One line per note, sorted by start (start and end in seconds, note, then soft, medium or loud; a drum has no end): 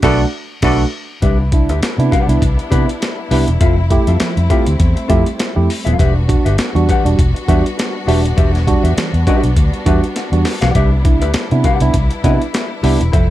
0.02 0.24 B1 medium
0.02 0.24 A3 loud
0.02 0.25 A3 loud
0.02 0.19 B3 loud
0.02 0.24 D4 loud
0.02 0.25 D4 medium
0.02 0.25 F#4 loud
0.02 0.19 A4 loud
0.02 0.25 B4 loud
0.02 0.19 D5 loud
0.02 kick loud
0.02 snare loud
0.02 crash medium
0.62 0.84 B1 loud
0.62 0.84 A3 loud
0.62 0.79 B3 medium
0.62 0.84 D4 loud
0.62 0.84 F#4 loud
0.62 0.79 A4 loud
0.62 0.84 B4 loud
0.62 0.79 D5 loud
0.62 kick loud
0.62 snare loud
0.62 crash medium
1.22 1.69 C2 medium
1.22 1.39 C3 medium
1.22 13.30 G3 medium
1.22 1.39 G3 medium
1.22 3.59 B3 medium
1.22 1.42 D4 medium
1.22 3.58 D4 medium
1.22 5.95 E4 medium
1.22 1.40 G4 medium
1.22 1.39 B4 medium
1.22 1.39 E5 medium
1.22 kick loud
1.22 closed hi-hat medium
1.40 muted hollow-body jazz guitar stroke soft
1.52 1.69 D4 medium
1.52 1.69 E4 medium
1.52 muted hollow-body jazz guitar stroke soft
1.52 kick medium
1.52 closed hi-hat medium
1.69 1.79 D2 medium
1.69 1.81 D4 soft
1.69 1.82 G4 medium
1.69 1.82 B4 soft
1.69 1.82 E5 medium
1.69 closed hi-hat medium
1.82 muted fingered electric bass stroke soft
1.82 snare loud
1.82 closed hi-hat medium
1.98 2.09 C3 loud
1.98 2.12 B3 medium
1.98 2.12 D4 medium
1.98 2.12 E4 medium
1.98 muted hollow-body jazz guitar stroke soft
1.98 closed hi-hat soft
2.11 2.29 C3 medium
2.11 2.29 G3 medium
2.11 2.33 D4 medium
2.11 2.28 G4 medium
2.11 2.27 B4 medium
2.11 2.28 F#5 medium
2.11 kick medium
2.11 closed hi-hat medium
2.28 2.39 C2 medium
2.28 2.42 B3 medium
2.28 2.42 D4 medium
2.28 2.42 E4 medium
2.28 muted hollow-body jazz guitar stroke medium
2.28 closed hi-hat medium
2.41 2.55 C2 medium
2.41 muted hollow-body jazz guitar stroke soft
2.41 kick medium
2.41 closed hi-hat medium
2.57 muted hollow-body jazz guitar stroke soft
2.57 closed hi-hat soft
2.70 2.84 C3 medium
2.70 2.88 B3 medium
2.70 2.91 D4 medium
2.70 2.88 D4 medium
2.70 2.88 E4 medium
2.70 2.87 G4 medium
2.70 2.87 B4 medium
2.70 2.87 E5 medium
2.70 kick medium
2.70 closed hi-hat medium
2.88 muted hollow-body jazz guitar stroke soft
2.88 closed hi-hat soft
3.00 muted hollow-body jazz guitar stroke soft
3.00 snare medium
3.00 closed hi-hat medium
3.18 muted hollow-body jazz guitar stroke soft
3.30 3.44 C2 medium
3.30 3.48 B3 medium
3.30 3.51 D4 medium
3.30 3.48 D4 medium
3.30 3.48 E4 medium
3.30 3.48 G4 medium
3.30 3.47 B4 medium
3.30 3.47 E5 medium
3.30 open hi-hat medium
3.48 3.58 E1 medium
3.48 muted hollow-body jazz guitar stroke soft
3.48 closed hi-hat medium
3.60 3.97 F1 medium
3.60 3.78 F3 medium
3.60 5.97 A3 medium
3.60 3.80 C4 medium
3.60 5.97 C4 medium
3.60 3.77 F4 medium
3.60 3.77 A4 medium
3.60 3.76 E5 medium
3.60 kick loud
3.60 closed hi-hat medium
3.78 muted hollow-body jazz guitar stroke soft
3.90 4.07 A3 medium
3.90 4.07 E4 medium
3.90 4.08 G4 medium
3.90 muted hollow-body jazz guitar stroke soft
3.90 kick medium
3.90 closed hi-hat medium
4.07 4.18 F2 medium
4.07 4.19 C4 soft
4.07 4.13 E4 soft
4.07 4.19 F4 medium
4.07 4.13 G4 soft
4.07 4.20 A4 medium
4.07 4.20 E5 medium
4.07 closed hi-hat medium
4.20 4.37 F3 medium
4.20 muted hollow-body jazz guitar stroke soft
4.20 muted fingered electric bass stroke soft
4.20 snare loud
4.20 closed hi-hat medium
4.37 4.47 F2 medium
4.37 muted hollow-body jazz guitar stroke soft
4.37 closed hi-hat soft
4.50 4.67 A3 medium
4.50 4.70 C4 medium
4.50 4.66 E4 medium
4.50 4.66 F4 medium
4.50 4.66 G4 medium
4.50 4.66 A4 medium
4.50 4.65 E5 medium
4.50 kick medium
4.50 closed hi-hat medium
4.66 4.77 D2 medium
4.66 4.72 E4 soft
4.66 4.72 G4 soft
4.66 muted hollow-body jazz guitar stroke soft
4.66 closed hi-hat medium
4.79 4.93 E2 medium
4.79 muted hollow-body jazz guitar stroke soft
4.79 kick medium
4.79 closed hi-hat medium
4.96 muted hollow-body jazz guitar stroke soft
4.96 closed hi-hat soft
5.08 5.23 F2 loud
5.08 5.26 A3 medium
5.08 5.29 C4 medium
5.08 5.26 E4 medium
5.08 5.26 F4 medium
5.08 5.26 G4 loud
5.08 5.25 A4 medium
5.08 5.24 E5 medium
5.08 kick medium
5.08 closed hi-hat medium
5.26 muted hollow-body jazz guitar stroke soft
5.26 closed hi-hat soft
5.38 muted hollow-body jazz guitar stroke soft
5.38 snare medium
5.38 closed hi-hat loud
5.55 5.67 F2 medium
5.55 5.69 A3 medium
5.55 5.69 E4 medium
5.55 5.69 G4 medium
5.55 muted hollow-body jazz guitar stroke soft
5.70 open hi-hat medium
5.85 5.96 D#1 loud
5.85 5.99 F3 medium
5.85 5.98 C4 medium
5.85 5.99 F4 medium
5.85 5.99 A4 medium
5.85 5.99 F5 medium
5.85 closed hi-hat medium
5.99 6.35 E1 loud
5.99 6.16 E3 medium
5.99 13.10 B3 medium
5.99 6.19 D4 medium
5.99 13.09 D4 medium
5.99 10.72 F#4 medium
5.99 6.15 G4 medium
5.99 6.15 B4 medium
5.99 6.15 E5 medium
5.99 kick loud
5.99 closed hi-hat medium
6.16 muted hollow-body jazz guitar stroke soft
6.28 6.45 D4 medium
6.28 6.45 F#4 medium
6.28 muted hollow-body jazz guitar stroke soft
6.28 kick loud
6.28 closed hi-hat medium
6.45 6.56 G1 medium
6.45 6.57 D4 soft
6.45 6.58 G4 medium
6.45 6.57 B4 medium
6.45 6.58 E5 medium
6.45 closed hi-hat medium
6.58 snare loud
6.58 closed hi-hat medium
6.75 6.85 E2 medium
6.75 6.88 G3 medium
6.75 6.88 D4 medium
6.75 6.88 F#4 medium
6.75 muted hollow-body jazz guitar stroke soft
6.75 closed hi-hat soft
6.89 7.05 E3 medium
6.89 7.09 D4 medium
6.89 7.06 G4 medium
6.89 7.05 B4 medium
6.89 7.06 F#5 medium
6.89 kick medium
6.89 closed hi-hat medium
7.05 7.15 E1 medium
7.05 7.18 G3 medium
7.05 7.18 D4 medium
7.05 7.18 F#4 medium
7.05 muted hollow-body jazz guitar stroke soft
7.05 closed hi-hat medium
7.19 7.31 E1 medium
7.19 muted hollow-body jazz guitar stroke soft
7.19 kick medium
7.19 closed hi-hat medium
7.35 muted hollow-body jazz guitar stroke soft
7.35 closed hi-hat soft
7.48 7.61 E2 medium
7.48 7.64 G3 medium
7.48 7.65 D4 medium
7.48 7.68 D4 medium
7.48 7.65 F#4 loud
7.48 7.64 G4 medium
7.48 7.64 B4 medium
7.48 7.63 E5 medium
7.48 kick medium
7.48 closed hi-hat medium
7.64 muted hollow-body jazz guitar stroke soft
7.64 closed hi-hat soft
7.78 muted hollow-body jazz guitar stroke soft
7.78 snare medium
7.78 closed hi-hat medium
7.94 muted hollow-body jazz guitar stroke soft
8.07 8.24 E1 medium
8.07 8.24 G3 medium
8.07 8.27 D4 medium
8.07 8.24 D4 medium
8.07 8.24 F#4 loud
8.07 8.23 G4 medium
8.07 8.23 B4 medium
8.07 8.22 E5 medium
8.07 open hi-hat medium
8.24 8.35 D#1 medium
8.24 muted hollow-body jazz guitar stroke soft
8.24 closed hi-hat medium
8.37 8.73 E1 medium
8.37 8.54 E3 medium
8.37 8.57 D4 medium
8.37 8.53 G4 medium
8.37 8.53 B4 medium
8.37 8.52 E5 loud
8.37 kick loud
8.37 closed hi-hat medium
8.53 muted hollow-body jazz guitar stroke soft
8.53 snare soft
8.53 closed hi-hat soft
8.67 8.84 G3 medium
8.67 8.83 D4 medium
8.67 8.83 F#4 loud
8.67 muted hollow-body jazz guitar stroke soft
8.67 kick loud
8.67 closed hi-hat medium
8.83 8.94 E2 medium
8.83 8.95 D4 soft
8.83 8.89 D4 soft
8.83 8.90 F#4 soft
8.83 8.96 G4 soft
8.83 8.96 B4 soft
8.83 8.96 E5 medium
8.83 closed hi-hat medium
8.97 9.14 E3 medium
8.97 muted hollow-body jazz guitar stroke soft
8.97 muted fingered electric bass stroke soft
8.97 snare loud
8.97 closed hi-hat medium
9.13 9.24 E2 medium
9.13 muted hollow-body jazz guitar stroke medium
9.13 closed hi-hat soft
9.27 9.43 G3 medium
9.27 9.48 D4 medium
9.27 9.42 D4 medium
9.27 9.42 F#4 medium
9.27 9.43 G4 loud
9.27 9.42 B4 medium
9.27 9.42 E5 medium
9.27 kick loud
9.27 closed hi-hat medium
9.43 9.54 B1 medium
9.43 9.49 D4 soft
9.43 9.49 F#4 soft
9.43 muted hollow-body jazz guitar stroke soft
9.43 closed hi-hat medium
9.56 9.69 D2 medium
9.56 muted hollow-body jazz guitar stroke soft
9.56 kick medium
9.56 closed hi-hat medium
9.73 muted hollow-body jazz guitar stroke soft
9.73 closed hi-hat soft
9.86 9.99 E2 loud
9.86 10.03 G3 medium
9.86 10.03 D4 medium
9.86 10.06 D4 medium
9.86 10.03 F#4 medium
9.86 10.02 G4 medium
9.86 10.02 B4 medium
9.86 10.02 E5 medium
9.86 kick loud
9.86 closed hi-hat medium
10.03 muted hollow-body jazz guitar stroke soft
10.03 closed hi-hat soft
10.16 muted hollow-body jazz guitar stroke soft
10.16 snare soft
10.16 closed hi-hat medium
10.32 10.42 E2 medium
10.32 10.45 G3 medium
10.32 10.46 D4 medium
10.32 10.46 F#4 medium
10.32 muted hollow-body jazz guitar stroke medium
10.32 closed hi-hat soft
10.45 snare medium
10.45 open hi-hat medium
10.61 10.72 B1 medium
10.61 10.75 E3 medium
10.61 10.73 D4 medium
10.61 10.74 G4 medium
10.61 10.74 B4 medium
10.61 10.75 F#5 medium
10.61 snare medium
10.61 closed hi-hat medium
10.75 11.22 C2 medium
10.75 10.92 C3 medium
10.75 10.92 G3 medium
10.75 10.95 D4 medium
10.75 13.30 E4 medium
10.75 10.92 G4 medium
10.75 10.92 B4 medium
10.75 10.91 E5 medium
10.75 kick loud
10.75 closed hi-hat medium
10.93 muted hollow-body jazz guitar stroke soft
11.05 11.21 D4 medium
11.05 11.22 E4 medium
11.05 muted hollow-body jazz guitar stroke soft
11.05 kick medium
11.05 closed hi-hat medium
11.21 11.32 D2 medium
11.21 11.34 D4 soft
11.21 11.34 G4 medium
11.21 11.34 B4 medium
11.21 11.34 E5 medium
11.21 closed hi-hat medium
11.34 muted hollow-body jazz guitar stroke soft
11.34 muted fingered electric bass stroke soft
11.34 snare loud
11.34 closed hi-hat medium
11.51 11.62 C3 medium
11.51 11.64 B3 medium
11.51 11.65 D4 medium
11.51 11.65 E4 medium
11.51 muted hollow-body jazz guitar stroke soft
11.51 closed hi-hat soft
11.64 11.81 C3 medium
11.64 11.81 G3 medium
11.64 11.86 D4 medium
11.64 11.81 G4 medium
11.64 11.81 B4 medium
11.64 11.81 F#5 medium
11.64 kick medium
11.64 closed hi-hat medium
11.80 11.91 C2 medium
11.80 11.94 B3 medium
11.80 11.94 D4 medium
11.80 11.95 E4 medium
11.80 muted hollow-body jazz guitar stroke medium
11.80 closed hi-hat medium
11.94 12.07 C2 medium
11.94 muted hollow-body jazz guitar stroke soft
11.94 kick medium
11.94 closed hi-hat medium
12.11 muted hollow-body jazz guitar stroke medium
12.11 closed hi-hat soft
12.24 12.37 C3 loud
12.24 12.41 B3 medium
12.24 12.45 D4 medium
12.24 12.41 D4 medium
12.24 12.41 E4 loud
12.24 12.40 G4 medium
12.24 12.39 B4 medium
12.24 12.39 E5 medium
12.24 kick medium
12.24 closed hi-hat medium
12.40 muted hollow-body jazz guitar stroke soft
12.40 closed hi-hat soft
12.53 muted hollow-body jazz guitar stroke soft
12.53 snare loud
12.53 closed hi-hat medium
12.70 muted hollow-body jazz guitar stroke medium
12.83 12.96 C2 medium
12.83 13.00 B3 medium
12.83 13.03 D4 medium
12.83 13.00 D4 medium
12.83 13.00 E4 medium
12.83 12.99 G4 medium
12.83 12.99 B4 medium
12.83 12.98 E5 medium
12.83 open hi-hat medium
13.00 13.11 E1 medium
13.00 muted hollow-body jazz guitar stroke medium
13.00 closed hi-hat soft
13.12 13.30 F1 loud
13.12 13.30 F3 medium
13.12 13.30 A3 medium
13.12 13.30 C4 medium
13.12 13.30 E4 medium
13.12 13.29 A4 medium
13.12 13.29 C5 medium
13.12 13.28 E5 medium
13.12 kick loud
13.12 closed hi-hat medium